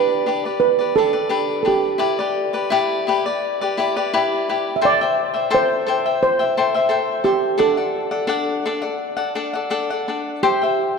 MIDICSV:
0, 0, Header, 1, 3, 480
1, 0, Start_track
1, 0, Key_signature, 1, "major"
1, 0, Tempo, 705053
1, 1383, Time_signature, 4, 2, 24, 8
1, 2340, Tempo, 692841
1, 5700, Tempo, 715990
1, 7509, End_track
2, 0, Start_track
2, 0, Title_t, "Cavaquinho"
2, 0, Program_c, 0, 24
2, 0, Note_on_c, 0, 62, 62
2, 0, Note_on_c, 0, 67, 60
2, 0, Note_on_c, 0, 71, 71
2, 0, Note_on_c, 0, 74, 61
2, 170, Note_off_c, 0, 62, 0
2, 174, Note_off_c, 0, 67, 0
2, 179, Note_on_c, 0, 62, 47
2, 182, Note_off_c, 0, 71, 0
2, 182, Note_on_c, 0, 67, 45
2, 185, Note_off_c, 0, 74, 0
2, 190, Note_on_c, 0, 71, 49
2, 193, Note_on_c, 0, 74, 50
2, 299, Note_off_c, 0, 74, 0
2, 301, Note_off_c, 0, 62, 0
2, 302, Note_off_c, 0, 67, 0
2, 306, Note_off_c, 0, 71, 0
2, 308, Note_on_c, 0, 74, 33
2, 314, Note_on_c, 0, 67, 33
2, 314, Note_on_c, 0, 71, 36
2, 528, Note_off_c, 0, 74, 0
2, 536, Note_on_c, 0, 74, 39
2, 541, Note_off_c, 0, 71, 0
2, 545, Note_off_c, 0, 67, 0
2, 549, Note_on_c, 0, 71, 39
2, 553, Note_on_c, 0, 67, 38
2, 657, Note_off_c, 0, 71, 0
2, 662, Note_off_c, 0, 67, 0
2, 662, Note_off_c, 0, 74, 0
2, 665, Note_on_c, 0, 62, 47
2, 665, Note_on_c, 0, 71, 42
2, 670, Note_on_c, 0, 67, 49
2, 670, Note_on_c, 0, 74, 56
2, 760, Note_off_c, 0, 74, 0
2, 762, Note_off_c, 0, 67, 0
2, 762, Note_off_c, 0, 71, 0
2, 768, Note_on_c, 0, 74, 49
2, 770, Note_on_c, 0, 67, 32
2, 770, Note_on_c, 0, 71, 43
2, 784, Note_off_c, 0, 62, 0
2, 872, Note_off_c, 0, 67, 0
2, 878, Note_off_c, 0, 74, 0
2, 881, Note_on_c, 0, 67, 50
2, 882, Note_off_c, 0, 71, 0
2, 886, Note_on_c, 0, 62, 59
2, 887, Note_on_c, 0, 74, 54
2, 890, Note_on_c, 0, 71, 69
2, 1114, Note_off_c, 0, 62, 0
2, 1115, Note_off_c, 0, 67, 0
2, 1121, Note_off_c, 0, 71, 0
2, 1121, Note_off_c, 0, 74, 0
2, 1122, Note_on_c, 0, 62, 38
2, 1123, Note_on_c, 0, 67, 47
2, 1129, Note_on_c, 0, 71, 41
2, 1129, Note_on_c, 0, 74, 46
2, 1346, Note_off_c, 0, 62, 0
2, 1348, Note_off_c, 0, 74, 0
2, 1349, Note_off_c, 0, 67, 0
2, 1349, Note_on_c, 0, 64, 55
2, 1351, Note_off_c, 0, 71, 0
2, 1357, Note_on_c, 0, 67, 62
2, 1357, Note_on_c, 0, 74, 72
2, 1359, Note_on_c, 0, 71, 69
2, 1481, Note_off_c, 0, 74, 0
2, 1489, Note_on_c, 0, 74, 49
2, 1490, Note_off_c, 0, 64, 0
2, 1491, Note_off_c, 0, 71, 0
2, 1494, Note_off_c, 0, 67, 0
2, 1499, Note_on_c, 0, 71, 42
2, 1502, Note_on_c, 0, 67, 41
2, 1715, Note_off_c, 0, 74, 0
2, 1721, Note_off_c, 0, 71, 0
2, 1724, Note_on_c, 0, 74, 42
2, 1728, Note_off_c, 0, 67, 0
2, 1729, Note_on_c, 0, 71, 50
2, 1736, Note_on_c, 0, 67, 41
2, 1840, Note_on_c, 0, 64, 81
2, 1842, Note_off_c, 0, 67, 0
2, 1842, Note_off_c, 0, 71, 0
2, 1842, Note_off_c, 0, 74, 0
2, 1850, Note_on_c, 0, 67, 86
2, 1850, Note_on_c, 0, 71, 83
2, 1850, Note_on_c, 0, 74, 93
2, 2081, Note_off_c, 0, 64, 0
2, 2089, Note_off_c, 0, 67, 0
2, 2089, Note_on_c, 0, 64, 52
2, 2094, Note_off_c, 0, 71, 0
2, 2095, Note_off_c, 0, 74, 0
2, 2097, Note_on_c, 0, 67, 57
2, 2102, Note_on_c, 0, 71, 66
2, 2103, Note_on_c, 0, 74, 66
2, 2209, Note_off_c, 0, 74, 0
2, 2214, Note_off_c, 0, 64, 0
2, 2215, Note_off_c, 0, 71, 0
2, 2218, Note_on_c, 0, 74, 54
2, 2219, Note_off_c, 0, 67, 0
2, 2223, Note_on_c, 0, 71, 42
2, 2232, Note_on_c, 0, 67, 41
2, 2454, Note_off_c, 0, 74, 0
2, 2458, Note_off_c, 0, 71, 0
2, 2463, Note_on_c, 0, 74, 57
2, 2465, Note_off_c, 0, 67, 0
2, 2466, Note_on_c, 0, 71, 50
2, 2473, Note_on_c, 0, 67, 46
2, 2568, Note_off_c, 0, 67, 0
2, 2574, Note_off_c, 0, 71, 0
2, 2574, Note_on_c, 0, 64, 56
2, 2577, Note_on_c, 0, 67, 58
2, 2582, Note_off_c, 0, 74, 0
2, 2582, Note_on_c, 0, 71, 52
2, 2591, Note_on_c, 0, 74, 78
2, 2696, Note_off_c, 0, 71, 0
2, 2698, Note_off_c, 0, 74, 0
2, 2699, Note_off_c, 0, 64, 0
2, 2700, Note_off_c, 0, 67, 0
2, 2705, Note_on_c, 0, 71, 51
2, 2707, Note_on_c, 0, 74, 50
2, 2712, Note_on_c, 0, 67, 44
2, 2818, Note_off_c, 0, 67, 0
2, 2819, Note_off_c, 0, 71, 0
2, 2819, Note_off_c, 0, 74, 0
2, 2823, Note_on_c, 0, 64, 79
2, 2826, Note_on_c, 0, 67, 67
2, 2827, Note_on_c, 0, 74, 68
2, 2828, Note_on_c, 0, 71, 69
2, 3063, Note_off_c, 0, 64, 0
2, 3065, Note_off_c, 0, 71, 0
2, 3067, Note_off_c, 0, 67, 0
2, 3070, Note_off_c, 0, 74, 0
2, 3071, Note_on_c, 0, 64, 47
2, 3073, Note_on_c, 0, 71, 43
2, 3075, Note_on_c, 0, 67, 52
2, 3078, Note_on_c, 0, 74, 53
2, 3291, Note_off_c, 0, 71, 0
2, 3292, Note_off_c, 0, 67, 0
2, 3294, Note_on_c, 0, 76, 66
2, 3295, Note_off_c, 0, 74, 0
2, 3295, Note_on_c, 0, 72, 55
2, 3296, Note_off_c, 0, 64, 0
2, 3298, Note_on_c, 0, 79, 80
2, 3299, Note_on_c, 0, 69, 65
2, 3422, Note_off_c, 0, 79, 0
2, 3423, Note_off_c, 0, 72, 0
2, 3423, Note_off_c, 0, 76, 0
2, 3425, Note_off_c, 0, 69, 0
2, 3430, Note_on_c, 0, 76, 47
2, 3430, Note_on_c, 0, 79, 47
2, 3441, Note_on_c, 0, 72, 45
2, 3647, Note_off_c, 0, 79, 0
2, 3651, Note_off_c, 0, 76, 0
2, 3656, Note_on_c, 0, 79, 43
2, 3660, Note_on_c, 0, 76, 43
2, 3661, Note_off_c, 0, 72, 0
2, 3669, Note_on_c, 0, 72, 38
2, 3767, Note_off_c, 0, 72, 0
2, 3768, Note_off_c, 0, 76, 0
2, 3771, Note_off_c, 0, 79, 0
2, 3772, Note_on_c, 0, 69, 71
2, 3775, Note_on_c, 0, 72, 74
2, 3777, Note_on_c, 0, 76, 77
2, 3779, Note_on_c, 0, 79, 80
2, 4014, Note_off_c, 0, 69, 0
2, 4022, Note_off_c, 0, 72, 0
2, 4022, Note_on_c, 0, 69, 57
2, 4023, Note_off_c, 0, 76, 0
2, 4024, Note_off_c, 0, 79, 0
2, 4032, Note_on_c, 0, 76, 66
2, 4033, Note_on_c, 0, 72, 50
2, 4040, Note_on_c, 0, 79, 59
2, 4139, Note_off_c, 0, 69, 0
2, 4144, Note_off_c, 0, 72, 0
2, 4144, Note_off_c, 0, 76, 0
2, 4148, Note_off_c, 0, 79, 0
2, 4154, Note_on_c, 0, 76, 37
2, 4155, Note_on_c, 0, 79, 41
2, 4163, Note_on_c, 0, 72, 36
2, 4379, Note_off_c, 0, 79, 0
2, 4386, Note_off_c, 0, 76, 0
2, 4387, Note_on_c, 0, 79, 49
2, 4390, Note_off_c, 0, 72, 0
2, 4393, Note_on_c, 0, 76, 37
2, 4399, Note_on_c, 0, 72, 37
2, 4506, Note_off_c, 0, 79, 0
2, 4507, Note_off_c, 0, 72, 0
2, 4509, Note_off_c, 0, 76, 0
2, 4513, Note_on_c, 0, 69, 56
2, 4515, Note_on_c, 0, 72, 58
2, 4519, Note_on_c, 0, 79, 54
2, 4524, Note_on_c, 0, 76, 61
2, 4623, Note_off_c, 0, 79, 0
2, 4624, Note_off_c, 0, 69, 0
2, 4625, Note_off_c, 0, 72, 0
2, 4629, Note_off_c, 0, 76, 0
2, 4631, Note_on_c, 0, 79, 49
2, 4636, Note_on_c, 0, 76, 47
2, 4646, Note_on_c, 0, 72, 46
2, 4727, Note_off_c, 0, 72, 0
2, 4731, Note_on_c, 0, 69, 57
2, 4734, Note_off_c, 0, 76, 0
2, 4735, Note_on_c, 0, 72, 56
2, 4737, Note_off_c, 0, 79, 0
2, 4742, Note_on_c, 0, 76, 56
2, 4746, Note_on_c, 0, 79, 67
2, 4965, Note_off_c, 0, 69, 0
2, 4972, Note_off_c, 0, 76, 0
2, 4973, Note_on_c, 0, 69, 37
2, 4975, Note_off_c, 0, 72, 0
2, 4980, Note_on_c, 0, 76, 50
2, 4982, Note_off_c, 0, 79, 0
2, 4984, Note_on_c, 0, 72, 37
2, 4991, Note_on_c, 0, 79, 45
2, 5199, Note_off_c, 0, 69, 0
2, 5205, Note_off_c, 0, 72, 0
2, 5208, Note_on_c, 0, 69, 71
2, 5210, Note_off_c, 0, 76, 0
2, 5213, Note_on_c, 0, 74, 73
2, 5214, Note_on_c, 0, 62, 60
2, 5215, Note_off_c, 0, 79, 0
2, 5218, Note_on_c, 0, 78, 73
2, 5335, Note_off_c, 0, 69, 0
2, 5335, Note_off_c, 0, 78, 0
2, 5338, Note_off_c, 0, 74, 0
2, 5339, Note_off_c, 0, 62, 0
2, 5344, Note_on_c, 0, 78, 40
2, 5349, Note_on_c, 0, 74, 38
2, 5353, Note_on_c, 0, 69, 39
2, 5570, Note_off_c, 0, 74, 0
2, 5570, Note_off_c, 0, 78, 0
2, 5574, Note_off_c, 0, 69, 0
2, 5578, Note_on_c, 0, 74, 41
2, 5578, Note_on_c, 0, 78, 41
2, 5583, Note_on_c, 0, 69, 31
2, 5681, Note_off_c, 0, 69, 0
2, 5689, Note_off_c, 0, 74, 0
2, 5690, Note_on_c, 0, 62, 68
2, 5690, Note_on_c, 0, 69, 69
2, 5695, Note_off_c, 0, 78, 0
2, 5698, Note_on_c, 0, 74, 71
2, 5704, Note_on_c, 0, 78, 76
2, 5939, Note_off_c, 0, 62, 0
2, 5939, Note_off_c, 0, 69, 0
2, 5943, Note_off_c, 0, 74, 0
2, 5945, Note_off_c, 0, 78, 0
2, 5947, Note_on_c, 0, 62, 58
2, 5947, Note_on_c, 0, 69, 58
2, 5954, Note_on_c, 0, 78, 53
2, 5956, Note_on_c, 0, 74, 70
2, 6047, Note_off_c, 0, 78, 0
2, 6052, Note_off_c, 0, 74, 0
2, 6055, Note_on_c, 0, 78, 50
2, 6057, Note_off_c, 0, 69, 0
2, 6060, Note_on_c, 0, 74, 36
2, 6061, Note_off_c, 0, 62, 0
2, 6065, Note_on_c, 0, 69, 34
2, 6281, Note_off_c, 0, 78, 0
2, 6286, Note_off_c, 0, 69, 0
2, 6289, Note_off_c, 0, 74, 0
2, 6289, Note_on_c, 0, 78, 49
2, 6294, Note_on_c, 0, 69, 36
2, 6297, Note_on_c, 0, 74, 46
2, 6406, Note_off_c, 0, 74, 0
2, 6408, Note_off_c, 0, 69, 0
2, 6413, Note_off_c, 0, 78, 0
2, 6414, Note_on_c, 0, 74, 53
2, 6416, Note_on_c, 0, 62, 53
2, 6416, Note_on_c, 0, 69, 52
2, 6422, Note_on_c, 0, 78, 68
2, 6528, Note_off_c, 0, 78, 0
2, 6536, Note_off_c, 0, 74, 0
2, 6536, Note_on_c, 0, 78, 45
2, 6537, Note_off_c, 0, 62, 0
2, 6537, Note_off_c, 0, 69, 0
2, 6548, Note_on_c, 0, 74, 44
2, 6550, Note_on_c, 0, 69, 42
2, 6644, Note_off_c, 0, 69, 0
2, 6644, Note_off_c, 0, 74, 0
2, 6647, Note_off_c, 0, 78, 0
2, 6648, Note_on_c, 0, 62, 58
2, 6652, Note_on_c, 0, 69, 66
2, 6652, Note_on_c, 0, 74, 62
2, 6655, Note_on_c, 0, 78, 71
2, 6776, Note_off_c, 0, 78, 0
2, 6778, Note_off_c, 0, 62, 0
2, 6780, Note_off_c, 0, 69, 0
2, 6780, Note_off_c, 0, 74, 0
2, 6784, Note_on_c, 0, 78, 48
2, 6788, Note_on_c, 0, 74, 36
2, 6797, Note_on_c, 0, 69, 33
2, 6894, Note_off_c, 0, 69, 0
2, 6900, Note_off_c, 0, 74, 0
2, 6902, Note_on_c, 0, 62, 35
2, 6902, Note_on_c, 0, 69, 38
2, 6904, Note_off_c, 0, 78, 0
2, 6908, Note_on_c, 0, 74, 45
2, 6912, Note_on_c, 0, 78, 44
2, 7133, Note_off_c, 0, 78, 0
2, 7134, Note_off_c, 0, 62, 0
2, 7134, Note_off_c, 0, 69, 0
2, 7134, Note_off_c, 0, 74, 0
2, 7136, Note_on_c, 0, 72, 72
2, 7136, Note_on_c, 0, 79, 68
2, 7137, Note_on_c, 0, 67, 65
2, 7137, Note_on_c, 0, 76, 57
2, 7253, Note_off_c, 0, 79, 0
2, 7261, Note_on_c, 0, 79, 47
2, 7262, Note_off_c, 0, 67, 0
2, 7262, Note_off_c, 0, 72, 0
2, 7263, Note_off_c, 0, 76, 0
2, 7270, Note_on_c, 0, 76, 44
2, 7275, Note_on_c, 0, 72, 39
2, 7494, Note_off_c, 0, 79, 0
2, 7499, Note_off_c, 0, 76, 0
2, 7500, Note_off_c, 0, 72, 0
2, 7509, End_track
3, 0, Start_track
3, 0, Title_t, "Steel pan"
3, 0, Program_c, 1, 114
3, 0, Note_on_c, 1, 71, 81
3, 390, Note_off_c, 1, 71, 0
3, 407, Note_on_c, 1, 71, 74
3, 652, Note_on_c, 1, 69, 81
3, 671, Note_off_c, 1, 71, 0
3, 1101, Note_off_c, 1, 69, 0
3, 1109, Note_on_c, 1, 69, 50
3, 1141, Note_on_c, 1, 67, 62
3, 1154, Note_off_c, 1, 69, 0
3, 2076, Note_off_c, 1, 67, 0
3, 3257, Note_on_c, 1, 76, 61
3, 3304, Note_off_c, 1, 76, 0
3, 3320, Note_on_c, 1, 74, 94
3, 3762, Note_off_c, 1, 74, 0
3, 3800, Note_on_c, 1, 72, 89
3, 4264, Note_off_c, 1, 72, 0
3, 4273, Note_on_c, 1, 72, 82
3, 4978, Note_on_c, 1, 67, 66
3, 5012, Note_off_c, 1, 72, 0
3, 5220, Note_off_c, 1, 67, 0
3, 5225, Note_on_c, 1, 69, 70
3, 6886, Note_off_c, 1, 69, 0
3, 7136, Note_on_c, 1, 67, 57
3, 7509, Note_off_c, 1, 67, 0
3, 7509, End_track
0, 0, End_of_file